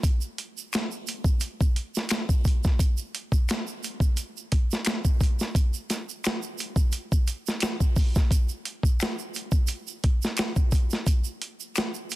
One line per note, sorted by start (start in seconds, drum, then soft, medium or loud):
0.03 kick loud
0.03 closed hi-hat medium
0.03 shaker medium
0.21 shaker soft
0.38 closed hi-hat medium
0.57 shaker soft
0.73 finger snap medium
0.73 snare loud
0.73 closed hi-hat medium
0.73 shaker medium
0.91 shaker soft
1.07 closed hi-hat medium
1.07 shaker soft
1.24 kick medium
1.24 shaker soft
1.40 closed hi-hat medium
1.40 shaker medium
1.61 kick medium
1.61 shaker soft
1.76 closed hi-hat medium
1.95 snare soft
1.95 shaker soft
2.09 finger snap medium
2.09 snare loud
2.09 closed hi-hat medium
2.09 shaker medium
2.29 kick medium
2.29 shaker soft
2.45 kick medium
2.45 closed hi-hat medium
2.45 shaker soft
2.64 kick loud
2.64 snare soft
2.64 shaker soft
2.79 kick loud
2.79 closed hi-hat medium
2.79 shaker medium
2.97 shaker soft
3.15 closed hi-hat medium
3.32 kick medium
3.32 shaker soft
3.49 finger snap medium
3.49 snare loud
3.49 closed hi-hat medium
3.49 shaker medium
3.67 shaker soft
3.83 closed hi-hat medium
3.83 shaker soft
4.00 kick medium
4.00 shaker soft
4.17 closed hi-hat medium
4.17 shaker medium
4.37 shaker soft
4.52 kick medium
4.52 closed hi-hat medium
4.71 snare soft
4.71 shaker soft
4.85 finger snap medium
4.85 snare loud
4.85 closed hi-hat medium
4.85 shaker medium
5.05 kick medium
5.05 shaker soft
5.20 kick medium
5.20 closed hi-hat medium
5.20 shaker soft
5.39 snare soft
5.39 shaker soft
5.55 kick loud
5.55 closed hi-hat medium
5.55 shaker medium
5.74 shaker soft
5.90 snare soft
5.90 closed hi-hat medium
5.90 shaker soft
6.09 shaker soft
6.24 finger snap medium
6.24 snare loud
6.24 closed hi-hat medium
6.24 shaker medium
6.42 shaker soft
6.58 closed hi-hat medium
6.58 shaker soft
6.76 kick medium
6.76 shaker soft
6.92 closed hi-hat medium
6.92 shaker medium
7.12 kick medium
7.12 shaker soft
7.27 closed hi-hat medium
7.27 shaker soft
7.46 snare soft
7.46 shaker soft
7.60 finger snap medium
7.60 snare loud
7.60 closed hi-hat medium
7.60 shaker medium
7.80 kick medium
7.80 shaker soft
7.96 kick medium
7.96 open hi-hat soft
7.96 shaker soft
8.15 kick loud
8.15 snare soft
8.15 shaker soft
8.31 kick loud
8.31 closed hi-hat medium
8.31 shaker medium
8.49 shaker soft
8.65 closed hi-hat medium
8.83 kick medium
8.83 shaker soft
9.00 finger snap medium
9.00 snare loud
9.00 closed hi-hat medium
9.00 shaker medium
9.19 shaker soft
9.34 closed hi-hat medium
9.34 shaker soft
9.52 kick medium
9.52 shaker soft
9.67 closed hi-hat medium
9.67 shaker medium
9.87 shaker soft
10.04 kick medium
10.04 closed hi-hat medium
10.22 snare soft
10.22 shaker soft
10.37 finger snap medium
10.37 snare loud
10.37 closed hi-hat medium
10.37 shaker medium
10.56 kick medium
10.56 shaker soft
10.71 kick medium
10.71 closed hi-hat medium
10.71 shaker soft
10.90 snare soft
10.90 shaker soft
11.07 kick loud
11.07 closed hi-hat medium
11.07 shaker medium
11.24 shaker soft
11.42 closed hi-hat medium
11.60 shaker soft
11.76 finger snap medium
11.76 snare loud
11.76 closed hi-hat medium
11.76 shaker medium
11.94 shaker soft
12.10 closed hi-hat medium
12.10 shaker soft